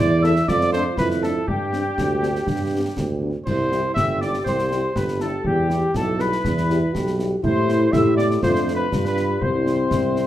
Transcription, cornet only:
0, 0, Header, 1, 2, 480
1, 0, Start_track
1, 0, Key_signature, 0, "major"
1, 0, Tempo, 496689
1, 468, Time_signature, 2, 2, 24, 8
1, 9923, End_track
2, 0, Start_track
2, 0, Title_t, "Cornet"
2, 0, Program_c, 0, 56
2, 0, Note_on_c, 0, 74, 99
2, 233, Note_off_c, 0, 74, 0
2, 247, Note_on_c, 0, 76, 89
2, 473, Note_on_c, 0, 74, 102
2, 488, Note_off_c, 0, 76, 0
2, 698, Note_off_c, 0, 74, 0
2, 704, Note_on_c, 0, 72, 91
2, 813, Note_off_c, 0, 72, 0
2, 948, Note_on_c, 0, 71, 92
2, 1056, Note_off_c, 0, 71, 0
2, 1189, Note_on_c, 0, 69, 74
2, 1438, Note_on_c, 0, 67, 78
2, 1452, Note_off_c, 0, 69, 0
2, 3112, Note_off_c, 0, 67, 0
2, 3336, Note_on_c, 0, 72, 88
2, 3787, Note_off_c, 0, 72, 0
2, 3811, Note_on_c, 0, 76, 83
2, 4041, Note_off_c, 0, 76, 0
2, 4075, Note_on_c, 0, 74, 65
2, 4181, Note_off_c, 0, 74, 0
2, 4323, Note_on_c, 0, 72, 80
2, 4817, Note_on_c, 0, 71, 74
2, 4831, Note_off_c, 0, 72, 0
2, 5044, Note_on_c, 0, 69, 66
2, 5058, Note_off_c, 0, 71, 0
2, 5275, Note_off_c, 0, 69, 0
2, 5295, Note_on_c, 0, 67, 72
2, 5770, Note_on_c, 0, 69, 82
2, 5784, Note_off_c, 0, 67, 0
2, 6002, Note_on_c, 0, 71, 72
2, 6016, Note_off_c, 0, 69, 0
2, 6954, Note_off_c, 0, 71, 0
2, 7203, Note_on_c, 0, 72, 98
2, 7660, Note_on_c, 0, 76, 89
2, 7675, Note_off_c, 0, 72, 0
2, 7885, Note_off_c, 0, 76, 0
2, 7891, Note_on_c, 0, 74, 80
2, 8002, Note_off_c, 0, 74, 0
2, 8143, Note_on_c, 0, 72, 86
2, 8443, Note_off_c, 0, 72, 0
2, 8459, Note_on_c, 0, 71, 78
2, 8757, Note_off_c, 0, 71, 0
2, 8763, Note_on_c, 0, 71, 82
2, 9094, Note_on_c, 0, 72, 76
2, 9109, Note_off_c, 0, 71, 0
2, 9923, Note_off_c, 0, 72, 0
2, 9923, End_track
0, 0, End_of_file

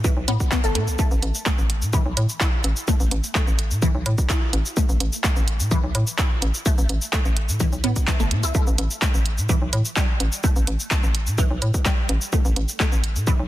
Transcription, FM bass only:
0, 0, Header, 1, 2, 480
1, 0, Start_track
1, 0, Key_signature, 0, "minor"
1, 0, Tempo, 472441
1, 1004, Time_signature, 4, 2, 24, 8
1, 13695, End_track
2, 0, Start_track
2, 0, Title_t, "FM bass"
2, 0, Program_c, 0, 39
2, 0, Note_on_c, 0, 45, 98
2, 107, Note_off_c, 0, 45, 0
2, 170, Note_on_c, 0, 35, 91
2, 256, Note_off_c, 0, 35, 0
2, 285, Note_on_c, 0, 45, 84
2, 379, Note_off_c, 0, 45, 0
2, 650, Note_on_c, 0, 31, 90
2, 765, Note_on_c, 0, 45, 100
2, 780, Note_off_c, 0, 31, 0
2, 890, Note_on_c, 0, 36, 91
2, 906, Note_off_c, 0, 45, 0
2, 976, Note_off_c, 0, 36, 0
2, 1130, Note_on_c, 0, 33, 95
2, 1216, Note_off_c, 0, 33, 0
2, 1244, Note_on_c, 0, 33, 94
2, 1338, Note_off_c, 0, 33, 0
2, 1610, Note_on_c, 0, 33, 88
2, 1850, Note_on_c, 0, 45, 99
2, 1865, Note_off_c, 0, 33, 0
2, 2027, Note_off_c, 0, 45, 0
2, 2090, Note_on_c, 0, 35, 91
2, 2176, Note_off_c, 0, 35, 0
2, 2204, Note_on_c, 0, 45, 88
2, 2298, Note_off_c, 0, 45, 0
2, 2684, Note_on_c, 0, 33, 90
2, 2778, Note_off_c, 0, 33, 0
2, 3050, Note_on_c, 0, 33, 98
2, 3136, Note_off_c, 0, 33, 0
2, 3164, Note_on_c, 0, 33, 93
2, 3258, Note_off_c, 0, 33, 0
2, 3530, Note_on_c, 0, 33, 86
2, 3770, Note_on_c, 0, 45, 99
2, 3785, Note_off_c, 0, 33, 0
2, 3947, Note_off_c, 0, 45, 0
2, 4010, Note_on_c, 0, 35, 94
2, 4096, Note_off_c, 0, 35, 0
2, 4124, Note_on_c, 0, 45, 86
2, 4218, Note_off_c, 0, 45, 0
2, 4604, Note_on_c, 0, 33, 90
2, 4698, Note_off_c, 0, 33, 0
2, 4969, Note_on_c, 0, 33, 97
2, 5055, Note_off_c, 0, 33, 0
2, 5084, Note_on_c, 0, 33, 91
2, 5178, Note_off_c, 0, 33, 0
2, 5449, Note_on_c, 0, 33, 89
2, 5689, Note_on_c, 0, 45, 101
2, 5704, Note_off_c, 0, 33, 0
2, 5867, Note_off_c, 0, 45, 0
2, 5930, Note_on_c, 0, 35, 97
2, 6016, Note_off_c, 0, 35, 0
2, 6044, Note_on_c, 0, 45, 87
2, 6138, Note_off_c, 0, 45, 0
2, 6524, Note_on_c, 0, 33, 94
2, 6618, Note_off_c, 0, 33, 0
2, 6889, Note_on_c, 0, 33, 96
2, 6975, Note_off_c, 0, 33, 0
2, 7004, Note_on_c, 0, 33, 92
2, 7098, Note_off_c, 0, 33, 0
2, 7369, Note_on_c, 0, 33, 90
2, 7609, Note_on_c, 0, 45, 97
2, 7625, Note_off_c, 0, 33, 0
2, 7787, Note_off_c, 0, 45, 0
2, 7850, Note_on_c, 0, 35, 93
2, 7936, Note_off_c, 0, 35, 0
2, 7965, Note_on_c, 0, 45, 82
2, 8058, Note_off_c, 0, 45, 0
2, 8330, Note_on_c, 0, 31, 86
2, 8445, Note_on_c, 0, 45, 108
2, 8460, Note_off_c, 0, 31, 0
2, 8570, Note_on_c, 0, 36, 93
2, 8585, Note_off_c, 0, 45, 0
2, 8656, Note_off_c, 0, 36, 0
2, 8811, Note_on_c, 0, 33, 99
2, 8896, Note_off_c, 0, 33, 0
2, 8925, Note_on_c, 0, 33, 95
2, 9019, Note_off_c, 0, 33, 0
2, 9291, Note_on_c, 0, 33, 87
2, 9530, Note_on_c, 0, 45, 99
2, 9546, Note_off_c, 0, 33, 0
2, 9707, Note_off_c, 0, 45, 0
2, 9771, Note_on_c, 0, 35, 91
2, 9856, Note_off_c, 0, 35, 0
2, 9886, Note_on_c, 0, 45, 89
2, 9979, Note_off_c, 0, 45, 0
2, 10365, Note_on_c, 0, 33, 89
2, 10459, Note_off_c, 0, 33, 0
2, 10730, Note_on_c, 0, 33, 99
2, 10816, Note_off_c, 0, 33, 0
2, 10845, Note_on_c, 0, 33, 93
2, 10939, Note_off_c, 0, 33, 0
2, 11210, Note_on_c, 0, 33, 86
2, 11450, Note_on_c, 0, 45, 99
2, 11465, Note_off_c, 0, 33, 0
2, 11627, Note_off_c, 0, 45, 0
2, 11690, Note_on_c, 0, 35, 93
2, 11776, Note_off_c, 0, 35, 0
2, 11805, Note_on_c, 0, 45, 86
2, 11898, Note_off_c, 0, 45, 0
2, 12285, Note_on_c, 0, 33, 90
2, 12378, Note_off_c, 0, 33, 0
2, 12650, Note_on_c, 0, 33, 98
2, 12736, Note_off_c, 0, 33, 0
2, 12764, Note_on_c, 0, 33, 96
2, 12858, Note_off_c, 0, 33, 0
2, 13130, Note_on_c, 0, 33, 87
2, 13369, Note_on_c, 0, 45, 98
2, 13384, Note_off_c, 0, 33, 0
2, 13547, Note_off_c, 0, 45, 0
2, 13609, Note_on_c, 0, 35, 95
2, 13695, Note_off_c, 0, 35, 0
2, 13695, End_track
0, 0, End_of_file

